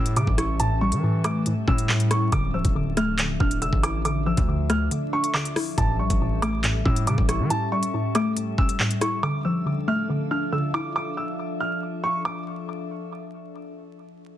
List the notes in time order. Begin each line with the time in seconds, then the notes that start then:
Already playing: A2 G3 A3 C#4 A4 E5 E6
0.06 closed hi-hat
0.16 A2 C#3 D6, closed hi-hat
0.27 A1, kick
0.38 E4 C#6, cross-stick, closed hi-hat
0.60 A2 A5, closed hi-hat
0.81 G3 C#6
0.92 E3, closed hi-hat
1.03 A2
1.24 A3 D6, cross-stick, closed hi-hat
1.46 A2, closed hi-hat
1.68 A2 C#4 E6, kick
1.78 closed hi-hat
1.89 A2, clap
2.00 closed hi-hat
2.11 E4 C#6, cross-stick, closed hi-hat
2.32 D1 D3 F3 D4 E5 D6, kick, closed hi-hat
2.54 F3 E6
2.65 D1, kick, closed hi-hat
2.75 D3
2.97 A3 F6, cross-stick, closed hi-hat
3.19 D3, clap, closed hi-hat
3.40 D1 D4 F6, kick
3.51 closed hi-hat
3.62 F1 D3 E6, closed hi-hat
3.73 A1, kick
3.83 E4 D6, cross-stick, closed hi-hat
4.05 D3 D6, closed hi-hat
4.26 F3 E6
4.37 D2, kick, closed hi-hat
4.48 D3
4.70 A3 F6, cross-stick, closed hi-hat
4.91 D3, closed hi-hat
5.13 D4 C#6
5.24 closed hi-hat
5.34 D3 D6, clap
5.45 closed hi-hat
5.56 E4, cross-stick, open hi-hat
5.77 A1 A2 G3 C#4 A5, kick, closed hi-hat
5.99 A#1 G3 C#6
6.10 A1, kick, closed hi-hat
6.21 A2
6.42 A3 D6, cross-stick, closed hi-hat
6.64 A2, clap, closed hi-hat
6.85 A2 C#4 E6, kick
6.96 closed hi-hat
7.07 A2 C#3 D6, closed hi-hat
7.18 A1, kick
7.29 E4 C#6, cross-stick, closed hi-hat
7.39 E3
7.50 A2 A5, closed hi-hat
7.72 G3 C#6
7.83 closed hi-hat
7.94 A2
8.15 A3 D6, cross-stick, closed hi-hat
8.37 A2, closed hi-hat
8.58 C#4 E6, kick
8.69 closed hi-hat
8.79 A2, clap
8.91 closed hi-hat
9.01 E4 C#6, cross-stick, closed hi-hat
9.23 D3 F3 D4 A4 E5 D6
9.45 F3 E6
9.66 D3
9.88 A3 F6
10.10 D3
10.31 D4 F6
10.52 D3 E6
10.74 E4 D6
10.96 D6
11.17 E6
11.60 F6
12.04 C#6
12.25 D6